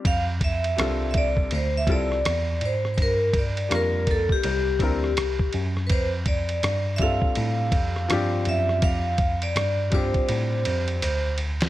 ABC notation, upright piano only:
X:1
M:4/4
L:1/8
Q:"Swing 16ths" 1/4=82
K:F
V:1 name="Upright piano"
z2 [G,CDFA]2 z [G,CEFA] z2 | z2 [G,B,DFB]2 z [G,CDEB] z2 | z3 [G,CDFA]3 [F,CDFG]2- | [F,CDFG] z2 [G,CDFG]3 z2 |]